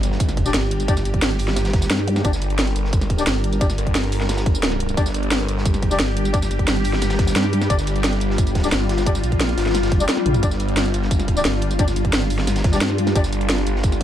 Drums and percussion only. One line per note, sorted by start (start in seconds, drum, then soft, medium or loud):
0.03 closed hi-hat medium
0.03 ride medium
0.03 tambourine soft
0.11 snare medium
0.20 kick loud
0.20 closed hi-hat loud
0.20 ride medium
0.20 tambourine soft
0.28 snare soft
0.28 closed hi-hat soft
0.28 ride soft
0.28 tambourine soft
0.37 kick medium
0.37 closed hi-hat medium
0.37 ride medium
0.46 snare soft
0.46 tambourine medium
0.53 snare loud
0.53 closed hi-hat loud
0.53 ride loud
0.53 tambourine medium
0.71 closed hi-hat medium
0.71 ride medium
0.80 closed hi-hat soft
0.80 tambourine soft
0.88 kick loud
0.88 closed hi-hat loud
0.88 ride medium
0.88 tambourine soft
0.96 snare soft
0.96 tambourine medium
1.05 closed hi-hat medium
1.05 ride medium
1.05 tambourine soft
1.14 kick medium
1.14 closed hi-hat soft
1.22 snare loud
1.22 closed hi-hat medium
1.22 ride medium
1.22 tambourine soft
1.31 closed hi-hat soft
1.39 open hi-hat medium
1.39 ride medium
1.39 tambourine soft
1.48 snare medium
1.48 snare soft
1.56 snare loud
1.56 snare medium
1.56 closed hi-hat loud
1.56 ride medium
1.56 tambourine medium
1.65 snare loud
1.65 closed hi-hat soft
1.65 ride medium
1.65 tambourine soft
1.73 kick loud
1.73 snare loud
1.73 closed hi-hat medium
1.73 ride medium
1.82 snare loud
1.82 ride medium
1.82 tambourine medium
1.91 snare loud
1.91 closed hi-hat loud
1.91 ride medium
1.91 tambourine medium
1.99 snare medium
1.99 ride soft
2.08 closed hi-hat medium
2.08 ride medium
2.16 snare medium
2.16 closed hi-hat soft
2.16 tambourine soft
2.24 kick loud
2.24 closed hi-hat medium
2.24 ride medium
2.24 tambourine soft
2.33 snare medium
2.33 tambourine medium
2.42 closed hi-hat medium
2.42 ride medium
2.42 tambourine soft
2.50 closed hi-hat soft
2.50 ride soft
2.59 snare loud
2.59 closed hi-hat medium
2.59 ride medium
2.59 tambourine soft
2.67 closed hi-hat soft
2.75 closed hi-hat medium
2.75 ride medium
2.75 tambourine soft
2.84 snare medium
2.93 kick loud
2.93 closed hi-hat medium
2.93 ride medium
2.93 tambourine soft
3.01 snare soft
3.01 closed hi-hat soft
3.01 ride soft
3.01 tambourine soft
3.10 kick medium
3.10 closed hi-hat medium
3.10 ride medium
3.18 snare soft
3.18 tambourine medium
3.27 snare loud
3.27 closed hi-hat loud
3.27 ride medium
3.27 tambourine medium
3.44 closed hi-hat medium
3.44 ride medium
3.52 closed hi-hat soft
3.52 tambourine soft
3.61 kick loud
3.61 closed hi-hat medium
3.61 ride medium
3.61 tambourine soft
3.69 snare soft
3.69 tambourine medium
3.78 closed hi-hat medium
3.78 tambourine soft
3.87 kick medium
3.87 closed hi-hat soft
3.95 snare loud
3.95 closed hi-hat medium
3.95 ride medium
3.95 tambourine soft
4.04 closed hi-hat soft
4.12 open hi-hat medium
4.12 ride medium
4.12 tambourine soft
4.20 snare medium
4.20 snare soft
4.29 snare medium
4.29 snare soft
4.29 closed hi-hat medium
4.29 ride medium
4.29 tambourine soft
4.34 snare medium
4.34 ride medium
4.37 snare loud
4.37 closed hi-hat soft
4.37 ride medium
4.37 tambourine soft
4.46 kick loud
4.46 closed hi-hat medium
4.46 ride medium
4.55 tambourine medium
4.63 snare loud
4.63 closed hi-hat medium
4.63 ride medium
4.63 tambourine medium
4.72 snare soft
4.72 ride soft
4.80 closed hi-hat medium
4.80 ride medium
4.89 closed hi-hat soft
4.89 tambourine soft
4.97 kick loud
4.97 closed hi-hat medium
4.97 ride medium
4.97 tambourine medium
5.06 snare medium
5.06 tambourine medium
5.14 closed hi-hat medium
5.14 ride medium
5.14 tambourine soft
5.23 closed hi-hat soft
5.23 ride soft
5.31 snare loud
5.31 closed hi-hat medium
5.31 ride medium
5.31 tambourine medium
5.40 closed hi-hat soft
5.48 closed hi-hat medium
5.48 ride medium
5.48 tambourine soft
5.58 snare medium
5.65 kick loud
5.65 closed hi-hat medium
5.65 ride medium
5.65 tambourine medium
5.74 snare soft
5.74 closed hi-hat soft
5.74 ride soft
5.74 tambourine soft
5.82 kick medium
5.82 closed hi-hat medium
5.82 ride medium
5.91 snare soft
5.91 tambourine medium
5.99 snare loud
5.99 closed hi-hat medium
5.99 ride medium
5.99 tambourine medium
6.16 closed hi-hat medium
6.16 ride medium
6.25 closed hi-hat soft
6.25 tambourine soft
6.33 kick loud
6.33 closed hi-hat medium
6.33 ride medium
6.33 tambourine medium
6.42 snare soft
6.42 tambourine medium
6.51 closed hi-hat medium
6.51 ride medium
6.51 tambourine soft
6.59 kick medium
6.59 closed hi-hat soft
6.68 snare loud
6.68 closed hi-hat medium
6.68 ride medium
6.68 tambourine medium
6.76 closed hi-hat soft
6.84 open hi-hat medium
6.84 ride medium
6.84 tambourine soft
6.93 snare medium
6.93 snare soft
7.01 snare loud
7.01 snare soft
7.01 closed hi-hat medium
7.01 ride medium
7.01 tambourine medium
7.10 snare loud
7.10 closed hi-hat soft
7.10 ride medium
7.10 tambourine soft
7.19 kick loud
7.19 snare medium
7.19 closed hi-hat medium
7.19 ride medium
7.27 snare loud
7.27 ride medium
7.27 tambourine medium
7.36 snare loud
7.36 closed hi-hat medium
7.36 ride medium
7.36 tambourine medium
7.45 snare soft
7.45 ride soft
7.53 closed hi-hat medium
7.53 ride medium
7.61 snare medium
7.61 snare soft
7.61 closed hi-hat soft
7.61 tambourine soft
7.70 kick loud
7.70 closed hi-hat loud
7.70 ride medium
7.70 tambourine medium
7.78 snare medium
7.78 tambourine medium
7.87 closed hi-hat medium
7.87 ride medium
7.87 tambourine soft
7.96 closed hi-hat soft
7.96 ride soft
8.04 snare loud
8.04 closed hi-hat loud
8.04 ride medium
8.04 tambourine medium
8.13 closed hi-hat soft
8.20 closed hi-hat medium
8.20 ride medium
8.20 tambourine soft
8.30 snare medium
8.38 kick loud
8.38 closed hi-hat loud
8.38 ride medium
8.38 tambourine medium
8.47 closed hi-hat soft
8.47 ride soft
8.47 tambourine soft
8.55 kick medium
8.55 snare medium
8.55 closed hi-hat medium
8.55 ride medium
8.59 snare medium
8.59 ride medium
8.63 snare medium
8.63 ride medium
8.63 tambourine medium
8.68 snare medium
8.68 ride medium
8.72 snare loud
8.72 closed hi-hat loud
8.72 ride medium
8.72 tambourine medium
8.89 snare loud
8.89 closed hi-hat medium
8.89 ride medium
8.97 snare loud
8.97 closed hi-hat soft
8.97 ride medium
8.97 tambourine soft
9.06 kick loud
9.06 closed hi-hat loud
9.06 ride medium
9.06 tambourine medium
9.15 snare soft
9.15 tambourine medium
9.24 closed hi-hat medium
9.24 ride medium
9.24 tambourine soft
9.32 kick medium
9.32 closed hi-hat soft
9.40 snare loud
9.40 closed hi-hat loud
9.40 ride medium
9.40 tambourine soft
9.49 closed hi-hat soft
9.57 snare loud
9.57 open hi-hat medium
9.57 ride medium
9.57 tambourine soft
9.65 snare soft
9.65 snare medium
9.65 ride medium
9.70 snare medium
9.70 ride medium
9.75 snare loud
9.75 snare medium
9.75 closed hi-hat loud
9.75 ride medium
9.75 tambourine medium
9.83 snare loud
9.83 closed hi-hat soft
9.83 ride medium
9.83 tambourine soft
9.87 snare medium
9.87 ride medium
9.92 kick loud
9.92 closed hi-hat medium
9.92 ride medium
10.00 tambourine medium
10.08 snare loud
10.08 closed hi-hat loud
10.08 ride medium
10.08 tambourine medium
10.17 snare medium
10.17 high tom medium
10.17 ride soft
10.26 closed hi-hat medium
10.26 mid tom medium
10.34 closed hi-hat soft
10.34 mid tom medium
10.34 tambourine soft
10.43 kick loud
10.43 closed hi-hat loud
10.43 ride loud
10.43 tambourine medium
10.51 snare medium
10.51 tambourine medium
10.60 closed hi-hat medium
10.60 ride medium
10.60 tambourine soft
10.68 closed hi-hat soft
10.68 ride soft
10.76 snare loud
10.76 closed hi-hat loud
10.76 ride medium
10.76 tambourine soft
10.86 closed hi-hat soft
10.94 closed hi-hat medium
10.94 ride medium
10.94 tambourine soft
11.02 snare medium
11.11 kick loud
11.11 closed hi-hat loud
11.11 ride medium
11.11 tambourine medium
11.19 snare soft
11.19 closed hi-hat soft
11.19 ride soft
11.19 tambourine soft
11.28 kick medium
11.28 closed hi-hat medium
11.28 ride medium
11.36 snare soft
11.36 tambourine medium
11.45 snare loud
11.45 closed hi-hat loud
11.45 ride medium
11.45 tambourine medium
11.62 closed hi-hat medium
11.62 ride medium
11.71 closed hi-hat soft
11.71 tambourine soft
11.79 kick loud
11.79 closed hi-hat medium
11.79 ride medium
11.79 tambourine soft
11.88 snare soft
11.88 tambourine medium
11.96 closed hi-hat medium
11.96 ride medium
11.96 tambourine soft
12.05 kick medium
12.05 closed hi-hat soft
12.12 snare loud
12.12 closed hi-hat medium
12.12 ride medium
12.12 tambourine soft
12.22 closed hi-hat soft
12.30 open hi-hat medium
12.30 ride medium
12.30 tambourine soft
12.38 snare medium
12.38 snare soft
12.47 snare loud
12.47 snare medium
12.47 closed hi-hat medium
12.47 ride medium
12.47 tambourine soft
12.56 snare loud
12.56 closed hi-hat soft
12.56 ride medium
12.56 tambourine soft
12.64 kick loud
12.64 snare loud
12.64 closed hi-hat medium
12.64 ride medium
12.73 snare loud
12.73 ride medium
12.73 tambourine medium
12.81 snare loud
12.81 closed hi-hat loud
12.81 ride medium
12.81 tambourine medium
12.90 snare soft
12.90 ride soft
12.98 closed hi-hat medium
12.98 ride medium
13.07 snare medium
13.07 closed hi-hat soft
13.07 tambourine soft
13.15 kick loud
13.15 closed hi-hat medium
13.15 ride medium
13.15 tambourine soft
13.23 snare medium
13.23 tambourine medium
13.32 closed hi-hat medium
13.32 ride medium
13.32 tambourine soft
13.41 closed hi-hat soft
13.41 ride soft
13.50 snare loud
13.50 closed hi-hat medium
13.50 ride medium
13.50 tambourine soft
13.58 closed hi-hat soft
13.66 closed hi-hat medium
13.66 ride medium
13.66 tambourine soft
13.76 snare medium
13.83 kick loud
13.83 closed hi-hat medium
13.83 ride medium
13.83 tambourine soft
13.92 snare soft
13.92 closed hi-hat soft
13.92 ride soft
13.92 tambourine soft